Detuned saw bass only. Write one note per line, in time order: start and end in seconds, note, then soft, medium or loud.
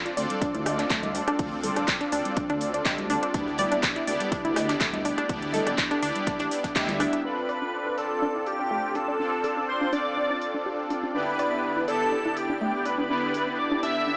0.17 0.26 D2 medium
0.54 0.85 D2 medium
0.90 1.21 D2 medium
1.39 1.70 D2 medium
1.76 1.84 D1 loud
2.12 2.21 D2 medium
2.50 2.80 D2 medium
2.86 3.17 D2 medium
3.34 3.65 D2 loud
3.71 3.79 D1 loud
4.07 4.16 D2 medium
4.45 4.75 D2 medium
4.81 5.12 D2 medium
5.29 5.60 D2 loud
5.67 5.75 D1 loud
6.02 6.11 D2 loud
6.40 6.48 A1 loud
6.76 7.07 D2 medium